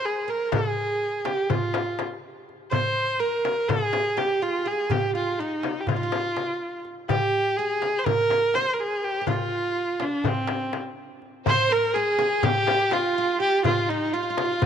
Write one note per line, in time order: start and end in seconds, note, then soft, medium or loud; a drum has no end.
0.00 0.27 C5 medium
0.05 0.31 G#4 medium
0.28 0.51 A#4 medium
0.28 0.53 A#4 medium
0.28 darbuka ka soft
0.52 1.25 G#4 medium
0.52 1.28 G#4 medium
0.52 frame drum loud
0.52 darbuka dum medium
1.02 darbuka ka soft
1.25 1.50 G4 medium
1.25 1.52 G4 medium
1.25 darbuka tek medium
1.25 frame drum medium
1.50 2.01 F4 medium
1.50 2.05 F4 medium
1.50 frame drum medium
1.50 darbuka dum medium
1.74 darbuka tek medium
1.74 frame drum medium
1.99 darbuka tek medium
1.99 frame drum medium
2.49 darbuka ka soft
2.71 3.21 C5 medium
2.71 3.20 C5 medium
2.71 frame drum medium
2.71 darbuka dum medium
2.84 darbuka ka soft
3.19 3.70 A#4 medium
3.19 3.69 A#4 medium
3.45 darbuka tek medium
3.45 frame drum medium
3.68 4.19 G#4 medium
3.68 4.16 G#4 medium
3.68 darbuka dum medium
3.68 frame drum medium
3.93 darbuka tek medium
3.93 frame drum medium
4.17 4.42 G4 medium
4.17 4.44 G4 medium
4.17 darbuka tek medium
4.17 frame drum medium
4.42 4.65 F4 medium
4.42 4.69 F4 medium
4.65 4.90 G#4 medium
4.65 4.93 G#4 medium
4.65 darbuka ka soft
4.90 5.15 G4 medium
4.90 darbuka dum medium
4.90 frame drum medium
5.03 darbuka ka soft
5.15 5.40 F4 medium
5.15 5.41 F4 medium
5.39 5.82 D#4 medium
5.39 5.90 D#4 medium
5.63 darbuka tek medium
5.63 frame drum medium
5.80 5.89 G4 medium
5.87 6.85 F4 medium
5.87 5.95 F4 medium
5.87 darbuka dum medium
5.87 frame drum medium
5.96 6.03 D#4 soft
6.03 6.82 F4 medium
6.12 darbuka tek medium
6.12 frame drum medium
6.36 darbuka tek medium
6.36 frame drum medium
6.85 darbuka ka soft
7.09 7.58 G4 medium
7.09 frame drum medium
7.09 darbuka dum medium
7.21 darbuka ka soft
7.57 8.00 G#4 medium
7.57 8.06 G#4 medium
7.82 darbuka tek medium
7.82 frame drum medium
7.99 8.07 C5 medium
8.05 8.56 A#4 loud
8.05 8.55 A#4 medium
8.05 darbuka dum medium
8.05 frame drum medium
8.30 darbuka tek medium
8.30 frame drum medium
8.54 8.75 C5 medium
8.54 9.21 C5 medium
8.54 darbuka tek medium
8.54 frame drum medium
8.73 8.82 A#4 medium
8.80 9.06 G#4 medium
9.03 9.28 G4 medium
9.03 darbuka ka soft
9.21 9.28 G4 medium
9.27 10.00 F4 medium
9.27 10.04 F4 medium
9.27 darbuka dum medium
9.27 frame drum medium
9.39 darbuka ka soft
9.51 darbuka ka soft
10.00 10.23 D4 medium
10.00 10.28 D4 medium
10.00 darbuka tek medium
10.00 frame drum medium
10.24 10.76 C4 medium
10.24 10.81 C4 medium
10.24 darbuka dum medium
10.24 frame drum medium
10.47 darbuka tek medium
10.47 frame drum medium
10.73 darbuka tek medium
10.73 frame drum medium
11.22 darbuka ka soft
11.46 11.69 C5 loud
11.46 11.70 C5 medium
11.46 11.74 C5 loud
11.46 frame drum medium
11.46 darbuka dum medium
11.70 11.95 A#4 medium
11.70 11.96 A#4 loud
11.94 12.46 G#4 medium
11.94 12.43 G#4 medium
11.94 12.18 G#4 medium
12.19 12.43 G#4 medium
12.19 darbuka tek medium
12.19 frame drum medium
12.43 12.93 G4 medium
12.43 12.92 G4 medium
12.43 12.94 G4 loud
12.43 darbuka dum medium
12.43 frame drum medium
12.67 darbuka tek medium
12.67 frame drum medium
12.91 13.63 F4 medium
12.91 13.40 F4 medium
12.91 13.17 F4 medium
12.91 darbuka tek medium
12.91 frame drum medium
13.18 13.39 F4 medium
13.40 13.65 G4 medium
13.40 13.63 G4 medium
13.64 13.87 F4 medium
13.64 13.90 F4 medium
13.64 darbuka dum medium
13.64 frame drum medium
13.88 14.13 D#4 medium
13.88 14.14 D#4 medium
14.12 14.66 F4 medium
14.12 14.65 F4 medium
14.12 14.20 F4 medium
14.23 14.29 F4 soft
14.30 14.36 F4 medium
14.37 14.43 F4 soft
14.37 darbuka tek medium
14.37 frame drum medium
14.45 14.51 F4 soft
14.52 14.58 F4 soft
14.60 14.65 F4 soft
14.60 frame drum medium
14.60 darbuka dum medium